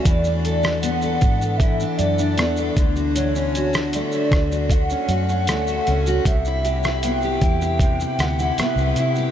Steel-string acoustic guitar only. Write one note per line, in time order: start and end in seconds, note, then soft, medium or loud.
0.00 0.83 A3 medium
0.00 0.13 C#4 medium
0.00 0.14 F#4 medium
0.06 1.61 E3 medium
0.27 0.63 D4 medium
0.45 1.03 A4 medium
0.63 1.23 D4 medium
0.83 2.36 B3 medium
1.04 1.43 A4 medium
1.23 1.81 D4 medium
1.43 2.00 A4 medium
1.62 2.85 E3 medium
1.82 2.19 D4 medium
2.01 2.58 A4 medium
2.20 3.36 D4 medium
2.38 2.84 B3 medium
2.59 2.96 A4 medium
2.78 3.15 D3 medium
2.97 3.54 F#4 medium
3.16 4.71 D3 medium
3.36 3.74 C#4 medium
3.56 4.13 F#4 medium
3.95 5.48 A3 medium
4.15 4.51 F#4 medium
4.52 5.09 F#4 medium
4.91 5.28 C#4 medium
5.10 5.67 F#4 medium
5.29 5.87 C#4 medium
5.49 6.34 A3 medium
5.68 6.06 F#4 medium
5.89 6.34 C#4 medium
6.08 6.34 F#4 medium
6.27 7.81 C3 medium
6.47 6.84 E4 medium
6.65 7.23 G4 medium
6.85 7.42 E4 medium
7.04 8.59 B3 medium
7.24 7.61 G4 medium
7.43 8.00 E4 medium
7.62 8.20 G4 medium
7.82 9.31 C3 medium
8.02 8.39 E4 medium
8.23 8.79 G4 medium
8.40 8.98 E4 medium
8.60 9.31 B3 medium
8.80 9.17 G4 medium
8.99 9.31 E4 medium
9.18 9.31 G4 medium